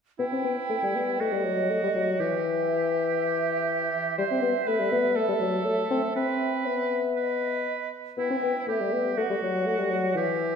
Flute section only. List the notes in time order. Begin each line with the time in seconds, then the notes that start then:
0.20 G5
1.21 D#5
2.21 E5
4.19 E5
5.17 E5
5.66 E5
6.16 E5
6.67 E5
7.18 D#5
8.19 G5
8.69 E5
9.18 F#5
9.67 F#5
10.17 E5